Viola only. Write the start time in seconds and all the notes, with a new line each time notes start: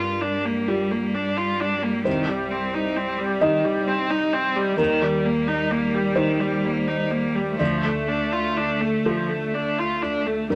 Already playing: F4
0.21 D4
0.45 A#3
0.68 G3
0.91 A#3
1.15 D4
1.37 F4
1.60 D4
1.83 A#3
2.05 D#3
2.28 G3
2.51 C4
2.74 D#4
2.96 C4
3.19 G3
3.42 D#3
3.65 G3
3.88 C4
4.10 D#4
4.33 C4
4.56 G3
4.79 D#3
5.02 G3
5.25 A#3
5.48 D#4
5.71 A#3
5.94 G3
6.17 D#3
6.40 G3
6.65 A#3
6.88 D#4
7.11 A#3
7.35 G3
7.59 F3
7.84 A3
8.08 D4
8.32 F4
8.57 D4
8.81 A3
9.06 F3
9.29 A3
9.54 D4
9.78 F4
10.02 D4
10.26 A3
10.50 G3